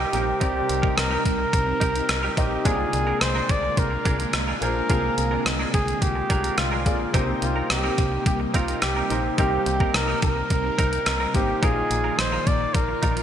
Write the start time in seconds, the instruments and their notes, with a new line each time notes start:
Already playing: grand piano C3 C4 G4 A#4, string machine C3 G3 A#3 D#4, flugelhorn G4
0.00 clean electric guitar D#4 G4 A#4
0.12 fm bass A#1, grand piano C4 G4 A#4 C5, clean electric guitar D#4 G4 A#4, closed hi-hat
0.27 muted clean electric guitar stroke
0.40 fm bass C2, grand piano C3 C4 G4 A#4 D5, string machine C4, clean electric guitar D#4 G4 A#4, flugelhorn G4, kick, closed hi-hat
0.55 muted clean electric guitar stroke
0.69 fm bass C2, muted clean electric guitar stroke, closed hi-hat
0.82 clean electric guitar D#4 G4 A#4, kick
0.96 fm bass C2, flugelhorn A#4, muted clean electric guitar stroke, cross-stick, closed hi-hat
1.11 clean electric guitar D#4 G4 A#4
1.25 fm bass C2, flugelhorn A#4, muted clean electric guitar stroke, kick, closed hi-hat
1.39 muted clean electric guitar stroke
1.53 fm bass C2, muted clean electric guitar stroke, kick, closed hi-hat
1.67 muted clean electric guitar stroke
1.80 fm bass C2, clean electric guitar D#4 G4 A#4, kick, closed hi-hat
1.95 clean electric guitar D#4 G4 A#4, closed hi-hat
2.09 fm bass C2, muted clean electric guitar stroke, cross-stick, closed hi-hat
2.23 clean electric guitar D#4 G4 A#4
2.37 fm bass A#1, grand piano C4 G4 A#4 D#5, flugelhorn G4, muted clean electric guitar stroke, kick, closed hi-hat
2.51 muted clean electric guitar stroke
2.65 fm bass C2, grand piano C3 A#3 F4 G#4 D5, string machine D3 G#3 A#3 F4, clean electric guitar D4 G#4 A#4, flugelhorn G#4, kick, closed hi-hat
2.79 muted clean electric guitar stroke
2.93 fm bass C2, muted clean electric guitar stroke, closed hi-hat
3.07 clean electric guitar D4 G#4 A#4
3.21 fm bass C2, flugelhorn C5, cross-stick, closed hi-hat
3.35 clean electric guitar D4 G#4 A#4
3.49 fm bass C2, flugelhorn D5, muted clean electric guitar stroke, kick, closed hi-hat
3.63 muted clean electric guitar stroke
3.77 fm bass C2, flugelhorn A#4, muted clean electric guitar stroke, kick, closed hi-hat
3.91 muted clean electric guitar stroke
4.05 fm bass C2, clean electric guitar D4 G#4 A#4, kick, closed hi-hat
4.19 clean electric guitar D4 G#4 A#4, closed hi-hat
4.33 fm bass C2, muted clean electric guitar stroke, cross-stick, closed hi-hat
4.48 clean electric guitar D4 G#4 A#4
4.61 fm bass A#1, grand piano A#3 F4 G#4 C5, clean electric guitar D4 G#4 A#4, flugelhorn A#4, closed hi-hat
4.76 muted clean electric guitar stroke
4.89 fm bass C2, grand piano C3 A#3 F4 G#4 C5, string machine C4, clean electric guitar D4 G#4 A#4, kick, closed hi-hat
5.03 muted clean electric guitar stroke
5.17 fm bass C2, muted clean electric guitar stroke, closed hi-hat
5.31 clean electric guitar D4 G#4 A#4
5.45 fm bass C2, muted clean electric guitar stroke, cross-stick, closed hi-hat
5.59 clean electric guitar D4 G#4 A#4
5.74 fm bass C2, flugelhorn G#4, muted clean electric guitar stroke, kick, closed hi-hat
5.88 muted clean electric guitar stroke, closed hi-hat
6.01 fm bass C2, flugelhorn G4, muted clean electric guitar stroke, kick, closed hi-hat
6.15 muted clean electric guitar stroke
6.30 fm bass C2, clean electric guitar D4 G#4 A#4, kick, closed hi-hat
6.44 clean electric guitar D4 G#4 A#4, closed hi-hat
6.57 fm bass C2, flugelhorn F4, cross-stick, closed hi-hat
6.71 clean electric guitar D4 G#4 A#4
6.86 fm bass A#1, grand piano A#3 F4 G#4 D5, kick, closed hi-hat
7.00 muted clean electric guitar stroke
7.13 fm bass C2, grand piano C3 A#3 D#4 G4 C5, string machine C3 G3 A#3 D#4, clean electric guitar C4 D#4 A#4, kick, closed hi-hat
7.28 muted clean electric guitar stroke
7.42 fm bass C2, flugelhorn F4, muted clean electric guitar stroke, closed hi-hat
7.56 clean electric guitar C4 D#4 A#4
7.70 fm bass C2, flugelhorn G4, muted clean electric guitar stroke, cross-stick, closed hi-hat
7.84 clean electric guitar C4 D#4 A#4
7.98 fm bass C2, muted clean electric guitar stroke, kick, closed hi-hat
8.12 muted clean electric guitar stroke
8.26 fm bass C2, flugelhorn G4, muted clean electric guitar stroke, kick, closed hi-hat
8.40 muted clean electric guitar stroke
8.54 fm bass C2, clean electric guitar C4 D#4 A#4, flugelhorn F4, kick, closed hi-hat
8.68 clean electric guitar C4 D#4 A#4, closed hi-hat
8.82 fm bass C2, flugelhorn G4, muted clean electric guitar stroke, cross-stick, closed hi-hat
8.96 clean electric guitar C4 D#4 A#4
9.10 fm bass A#1, grand piano A#3 D#4 G4 C5, clean electric guitar C4 D#4 A#4, closed hi-hat
9.24 muted clean electric guitar stroke
9.38 fm bass C2, grand piano C3 A#3 D#4 G4 C5, string machine C4, clean electric guitar C4 D#4 A#4, flugelhorn G4, kick, closed hi-hat
9.52 muted clean electric guitar stroke
9.66 fm bass C2, muted clean electric guitar stroke, closed hi-hat
9.80 clean electric guitar C4 D#4 A#4, kick
9.94 fm bass C2, flugelhorn A#4, muted clean electric guitar stroke, cross-stick, closed hi-hat
10.08 clean electric guitar C4 D#4 A#4
10.22 fm bass C2, flugelhorn A#4, muted clean electric guitar stroke, kick, closed hi-hat
10.36 muted clean electric guitar stroke
10.50 fm bass C2, muted clean electric guitar stroke, kick, closed hi-hat
10.64 muted clean electric guitar stroke
10.78 fm bass C2, clean electric guitar C4 D#4 A#4, kick, closed hi-hat
10.92 clean electric guitar C4 D#4 A#4, closed hi-hat
11.06 fm bass C2, muted clean electric guitar stroke, cross-stick, closed hi-hat
11.20 clean electric guitar C4 D#4 A#4
11.34 fm bass G#1, grand piano A#3 D#4 G4 C5, flugelhorn G4, muted clean electric guitar stroke, kick, closed hi-hat
11.48 muted clean electric guitar stroke
11.62 fm bass A#1, grand piano A#2 A#3 D#4 F4 D#5, string machine D#3 F3 A#3 F4, clean electric guitar D#4 F4 A#4, flugelhorn G#4, kick, closed hi-hat
11.76 muted clean electric guitar stroke
11.90 fm bass A#1, muted clean electric guitar stroke, closed hi-hat
12.04 clean electric guitar D#4 F4 A#4
12.18 fm bass A#1, flugelhorn C5, muted clean electric guitar stroke, cross-stick, closed hi-hat
12.32 clean electric guitar D#4 F4 A#4
12.46 fm bass A#1, flugelhorn D5, muted clean electric guitar stroke, kick, closed hi-hat
12.60 muted clean electric guitar stroke
12.74 fm bass A#1, flugelhorn A#4, muted clean electric guitar stroke, kick, closed hi-hat
12.89 muted clean electric guitar stroke
13.02 fm bass A#1, clean electric guitar D#4 F4 A#4, kick, closed hi-hat
13.16 clean electric guitar D#4 F4 A#4, closed hi-hat